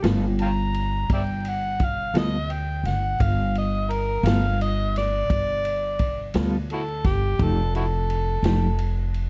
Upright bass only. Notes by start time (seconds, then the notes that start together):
0.03 G1
1.10 G1
2.14 D2
2.83 G1
3.20 G1
4.23 G1
5.30 G1
6.34 D2
7.05 G1
7.39 F1
8.43 F1